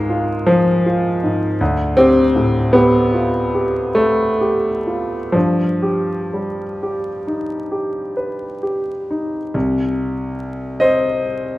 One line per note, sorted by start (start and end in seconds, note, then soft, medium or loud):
0.00 1.56 C#2 medium
0.00 1.23 G#2 soft
0.00 0.48 G#3 medium
0.00 1.63 A#3 medium
0.00 0.10 F4 soft
0.10 0.71 F4 soft
0.47 1.59 F3 medium
0.47 1.08 C5 soft
0.86 1.45 F4 soft
1.23 1.60 G#2 soft
1.61 5.31 D2 medium
1.97 2.74 C4 loud
1.97 2.59 G4 soft
2.36 2.98 A2 soft
2.73 3.95 B3 medium
2.73 3.38 G4 soft
3.14 3.79 F4 soft
3.55 4.23 G4 soft
3.95 5.34 A3 medium
3.95 4.68 A4 soft
4.41 5.16 G4 soft
4.87 5.35 F4 soft
5.32 9.51 G2 soft
5.32 9.09 F3 medium
5.82 6.61 G4 soft
6.34 7.09 G3 soft
6.83 7.55 G4 soft
7.27 8.00 D#4 soft
7.72 8.45 G4 soft
8.17 8.91 B4 soft
8.63 9.37 G4 soft
9.10 9.55 D#4 soft
9.54 11.58 C2 medium
10.80 11.58 C4 soft
10.80 11.55 C5 medium
10.80 11.58 D#5 medium